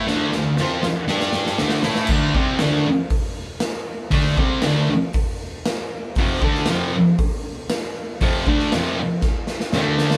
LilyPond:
<<
  \new Staff \with { instrumentName = "Distorted electric guitar" } { \clef bass \time 4/4 \key d \minor \tempo 4 = 118 <d a d'>8 <d a>8 <f c' f'>8 r8 <g d' g'>4 <d a d'>8 <a e' a'>8 | <d a d'>8 <c g c'>8 <d a d'>8 r2 r8 | <d a d'>8 <c g c'>8 <d a d'>8 r2 r8 | <f, c f>8 <d a d'>8 <f, c f>8 r2 r8 |
<f, c f>8 <d a d'>8 <f, c f>8 r4. <d a d'>4 | }
  \new DrumStaff \with { instrumentName = "Drums" } \drummode { \time 4/4 sn8 sn8 sn8 sn8 sn16 sn16 sn16 sn16 sn16 sn16 sn16 sn16 | <cymc bd>8 bd8 <hho sn>4 <hho bd>4 <hho sn>4 | <hho bd>8 bd8 <hho sn>4 <hho bd>4 <hho sn>4 | <hho bd>8 bd16 sn16 <hho sn>4 <hho bd>4 <hho sn>4 |
<hho bd>8 bd16 sn16 <hho sn>4 <bd sn>8 sn16 sn16 sn8 sn16 sn16 | }
>>